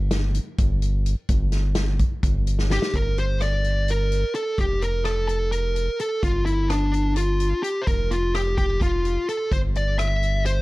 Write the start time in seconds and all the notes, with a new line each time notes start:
Already playing: G1
0.11 snare, closed hi-hat
0.35 closed hi-hat
0.58 G1, kick, closed hi-hat
0.82 closed hi-hat
1.06 closed hi-hat
1.29 G1, kick, closed hi-hat
1.52 snare, closed hi-hat
1.75 snare, closed hi-hat
1.99 kick, closed hi-hat
2.23 G1, kick, closed hi-hat
2.47 closed hi-hat
2.59 snare
2.70 G4, snare
2.82 snare
2.94 G1 A#4, kick, closed hi-hat
3.18 C5, closed hi-hat
3.41 D5, cross-stick, closed hi-hat
3.64 closed hi-hat
3.88 A#4, closed hi-hat
4.12 closed hi-hat
4.34 A4, closed hi-hat
4.58 F1 G4, kick, closed hi-hat
4.82 A#4, closed hi-hat
5.05 A4, cross-stick, closed hi-hat
5.28 A4, closed hi-hat
5.52 A#4, closed hi-hat
5.76 closed hi-hat
5.99 A4, closed hi-hat
6.23 G1 F4, kick, closed hi-hat
6.45 E4, closed hi-hat
6.68 D4, cross-stick, closed hi-hat
6.94 closed hi-hat
7.16 F4, closed hi-hat
7.40 closed hi-hat
7.63 G4, closed hi-hat
7.81 C5
7.87 F1 A#4, kick, closed hi-hat
8.11 F4, closed hi-hat
8.35 G4, cross-stick, closed hi-hat
8.58 G4, kick, closed hi-hat
8.81 F4, kick, closed hi-hat
9.05 closed hi-hat
9.29 A4, closed hi-hat
9.52 G1 C5, kick, closed hi-hat
9.75 D5, closed hi-hat
9.99 E5, cross-stick, closed hi-hat
10.23 closed hi-hat
10.46 C5, closed hi-hat